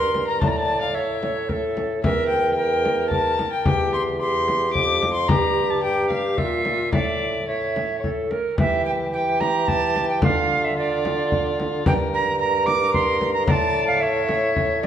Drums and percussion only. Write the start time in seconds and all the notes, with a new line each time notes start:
0.14 frame drum
0.42 frame drum
1.23 frame drum
1.49 frame drum
1.77 frame drum
2.04 frame drum
2.85 frame drum
3.11 frame drum
3.39 frame drum
3.66 frame drum
4.48 frame drum
4.75 frame drum
5.02 frame drum
5.29 frame drum
6.10 frame drum
6.38 frame drum
6.65 frame drum
6.93 frame drum
7.76 frame drum
8.04 frame drum
8.31 frame drum
8.58 frame drum
9.41 frame drum
9.68 frame drum
9.96 frame drum
10.22 frame drum
11.05 frame drum
11.32 frame drum
11.60 frame drum
11.86 frame drum
12.67 frame drum
12.94 frame drum
13.21 frame drum
13.47 frame drum
14.29 frame drum
14.56 frame drum
14.83 frame drum